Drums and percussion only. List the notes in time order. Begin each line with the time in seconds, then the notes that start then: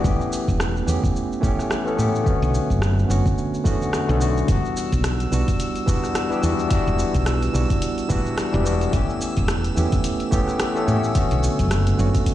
0.04 kick, shaker
0.21 shaker
0.33 shaker
0.48 kick, shaker
0.60 cross-stick, shaker
0.77 shaker
0.88 shaker
1.04 kick, shaker
1.16 shaker
1.32 shaker
1.43 kick, shaker
1.59 cross-stick, shaker
1.71 cross-stick, shaker
1.87 shaker
1.99 shaker
2.15 shaker
2.26 kick, shaker
2.43 shaker
2.54 shaker
2.70 kick, shaker
2.82 cross-stick, shaker
2.99 shaker
3.10 shaker
3.26 kick, shaker
3.38 shaker
3.54 shaker
3.65 kick, shaker
3.82 shaker
3.93 cross-stick, shaker
4.10 shaker
4.21 shaker
4.37 shaker
4.48 kick, closed hi-hat, shaker
4.65 shaker
4.77 shaker
4.92 kick, closed hi-hat, shaker
5.04 cross-stick, closed hi-hat, shaker
5.20 closed hi-hat, shaker
5.33 shaker
5.48 kick, closed hi-hat, shaker
5.60 closed hi-hat, shaker
5.76 closed hi-hat, shaker
5.88 kick, shaker
6.04 cross-stick, shaker
6.15 cross-stick, closed hi-hat, shaker
6.32 shaker
6.43 shaker
6.59 shaker
6.71 kick, closed hi-hat, shaker
6.87 shaker
6.99 shaker
7.14 kick, closed hi-hat, shaker
7.26 cross-stick, closed hi-hat, shaker
7.43 closed hi-hat, shaker
7.55 shaker
7.70 kick, closed hi-hat, shaker
7.82 closed hi-hat, shaker
7.98 closed hi-hat, shaker
8.10 kick, shaker
8.26 shaker
8.38 cross-stick, closed hi-hat, shaker
8.54 shaker
8.66 shaker
8.81 closed hi-hat, shaker
8.93 kick, closed hi-hat, shaker
9.10 shaker
9.21 shaker
9.37 kick, closed hi-hat, shaker
9.48 cross-stick, closed hi-hat, shaker
9.64 closed hi-hat, shaker
9.77 shaker
9.92 kick, closed hi-hat, shaker
10.04 closed hi-hat, shaker
10.20 closed hi-hat, shaker
10.32 kick, shaker
10.48 cross-stick, shaker
10.60 cross-stick, closed hi-hat, shaker
10.76 shaker
10.88 shaker
11.04 shaker
11.15 kick, closed hi-hat, shaker
11.31 closed hi-hat, shaker
11.44 shaker
11.59 kick, closed hi-hat, shaker
11.71 cross-stick, closed hi-hat, shaker
11.87 closed hi-hat, shaker
11.99 shaker
12.15 kick, closed hi-hat, shaker
12.26 kick, closed hi-hat, shaker